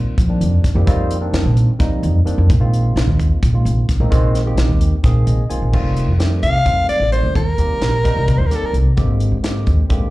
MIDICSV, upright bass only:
0, 0, Header, 1, 3, 480
1, 0, Start_track
1, 0, Tempo, 462963
1, 905, Time_signature, 7, 3, 24, 8
1, 10473, End_track
2, 0, Start_track
2, 0, Title_t, "Upright bass"
2, 0, Program_c, 0, 32
2, 184, Note_on_c, 0, 53, 83
2, 422, Note_on_c, 0, 41, 79
2, 438, Note_off_c, 0, 53, 0
2, 646, Note_off_c, 0, 41, 0
2, 780, Note_on_c, 0, 41, 85
2, 893, Note_off_c, 0, 41, 0
2, 907, Note_on_c, 0, 41, 89
2, 1351, Note_off_c, 0, 41, 0
2, 1379, Note_on_c, 0, 41, 80
2, 1493, Note_off_c, 0, 41, 0
2, 1506, Note_on_c, 0, 46, 84
2, 1728, Note_off_c, 0, 46, 0
2, 1867, Note_on_c, 0, 53, 82
2, 2102, Note_on_c, 0, 41, 85
2, 2118, Note_off_c, 0, 53, 0
2, 2325, Note_off_c, 0, 41, 0
2, 2466, Note_on_c, 0, 41, 80
2, 2576, Note_off_c, 0, 41, 0
2, 2590, Note_on_c, 0, 34, 98
2, 3032, Note_off_c, 0, 34, 0
2, 3067, Note_on_c, 0, 34, 85
2, 3176, Note_off_c, 0, 34, 0
2, 3188, Note_on_c, 0, 39, 89
2, 3408, Note_off_c, 0, 39, 0
2, 3553, Note_on_c, 0, 46, 80
2, 3787, Note_on_c, 0, 34, 89
2, 3802, Note_off_c, 0, 46, 0
2, 4008, Note_off_c, 0, 34, 0
2, 4146, Note_on_c, 0, 34, 78
2, 4256, Note_off_c, 0, 34, 0
2, 4269, Note_on_c, 0, 34, 96
2, 4712, Note_off_c, 0, 34, 0
2, 4745, Note_on_c, 0, 34, 90
2, 4855, Note_off_c, 0, 34, 0
2, 4865, Note_on_c, 0, 39, 79
2, 5087, Note_off_c, 0, 39, 0
2, 5222, Note_on_c, 0, 46, 82
2, 5462, Note_on_c, 0, 34, 87
2, 5478, Note_off_c, 0, 46, 0
2, 5686, Note_off_c, 0, 34, 0
2, 5825, Note_on_c, 0, 34, 74
2, 5936, Note_off_c, 0, 34, 0
2, 5945, Note_on_c, 0, 29, 80
2, 6279, Note_off_c, 0, 29, 0
2, 6301, Note_on_c, 0, 41, 70
2, 6637, Note_off_c, 0, 41, 0
2, 6665, Note_on_c, 0, 36, 70
2, 6776, Note_off_c, 0, 36, 0
2, 6904, Note_on_c, 0, 41, 81
2, 7016, Note_off_c, 0, 41, 0
2, 7253, Note_on_c, 0, 33, 64
2, 7482, Note_off_c, 0, 33, 0
2, 7499, Note_on_c, 0, 38, 73
2, 7614, Note_off_c, 0, 38, 0
2, 7626, Note_on_c, 0, 39, 101
2, 7849, Note_off_c, 0, 39, 0
2, 7858, Note_on_c, 0, 39, 73
2, 7974, Note_off_c, 0, 39, 0
2, 8099, Note_on_c, 0, 34, 88
2, 8437, Note_off_c, 0, 34, 0
2, 8465, Note_on_c, 0, 36, 79
2, 8577, Note_off_c, 0, 36, 0
2, 8700, Note_on_c, 0, 39, 83
2, 8815, Note_off_c, 0, 39, 0
2, 9055, Note_on_c, 0, 36, 76
2, 9173, Note_off_c, 0, 36, 0
2, 9306, Note_on_c, 0, 32, 86
2, 9642, Note_off_c, 0, 32, 0
2, 9658, Note_on_c, 0, 44, 63
2, 9997, Note_off_c, 0, 44, 0
2, 10026, Note_on_c, 0, 39, 82
2, 10139, Note_off_c, 0, 39, 0
2, 10263, Note_on_c, 0, 44, 82
2, 10377, Note_off_c, 0, 44, 0
2, 10473, End_track
3, 0, Start_track
3, 0, Title_t, "Muted upright bass strokes"
3, 662, Note_on_c, 9, 29, 37
3, 765, Note_off_c, 9, 29, 0
3, 2346, Note_on_c, 9, 29, 38
3, 2450, Note_off_c, 9, 29, 0
3, 4033, Note_on_c, 9, 29, 36
3, 4136, Note_off_c, 9, 29, 0
3, 5707, Note_on_c, 9, 29, 34
3, 5810, Note_off_c, 9, 29, 0
3, 7145, Note_on_c, 9, 29, 34
3, 7249, Note_off_c, 9, 29, 0
3, 7980, Note_on_c, 9, 29, 29
3, 8083, Note_off_c, 9, 29, 0
3, 8584, Note_on_c, 9, 29, 34
3, 8688, Note_off_c, 9, 29, 0
3, 8939, Note_on_c, 9, 29, 31
3, 9043, Note_off_c, 9, 29, 0
3, 10473, End_track
0, 0, End_of_file